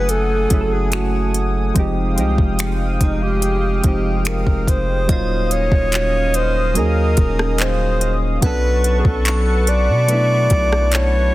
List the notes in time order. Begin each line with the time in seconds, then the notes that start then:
Already playing: F#1 F#3 A3 C#4 E4 G#4 B4 F#5 G#5 D#6
0.09 A4, closed hi-hat
0.49 F#1 F#3 A3 C#4 E4, kick, closed hi-hat
0.54 G#4
0.61 A4
0.73 G#4
0.92 F#4, finger snap, closed hi-hat
1.34 closed hi-hat
1.74 F1 F3 G#3 C4 D#4 F5 G5, kick, closed hi-hat
1.79 G4
2.16 C2 F3 G#3 C4 D#4, closed hi-hat
2.21 G4
2.38 F1, kick
2.59 finger snap, closed hi-hat
3.01 F1 D#4, kick, closed hi-hat
3.23 G4
3.42 closed hi-hat
3.83 F1 F3 G#3 C4 D#4 G4, kick, closed hi-hat
3.88 G4
4.25 A#4, finger snap, closed hi-hat
4.47 F1, kick
4.67 F1 C5, kick, closed hi-hat
5.08 D#1 F#3 A#3 C#4 D#4 D#5 F5 D#6, kick, closed hi-hat
5.12 F4
5.51 C#5, closed hi-hat
5.72 D#1, kick
5.92 clap, closed hi-hat
6.34 C5, closed hi-hat
6.74 D#2 F#3 A#3 C#4 D#4 A#4, closed hi-hat
6.79 G#4
7.17 D#1, kick, closed hi-hat
7.39 cross-stick
7.58 C5, clap, closed hi-hat
8.01 closed hi-hat
8.41 B1 F#3 B3 C#4 D4 B4 F#5 A5 C#6, kick, closed hi-hat
8.46 A4
8.84 closed hi-hat
8.99 G#4
9.05 B1 A4, kick
9.25 C#6, clap, closed hi-hat
9.67 D5, closed hi-hat
9.89 B2
10.08 F#3 A3 B3 D4, closed hi-hat
10.13 E4
10.50 B1, kick, closed hi-hat
10.73 cross-stick
10.92 C#5, clap, closed hi-hat